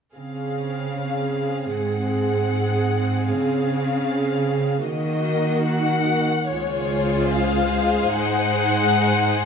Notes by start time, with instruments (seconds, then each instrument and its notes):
0.16 cello section C#3, viola section C4 G#4, violin section F5
1.76 cello section G#2, violin section F#5
3.31 cello section C#3, violin section F5
4.86 cello section D#3, viola section A#3 F#4, violin section D#5
5.67 violin section F#5
6.51 cello section C#2, viola section G#3 F4, violin section G#4 C5 C#5
7.32 violin section F5
8.11 cello section G#2, viola section D#4, violin section F#5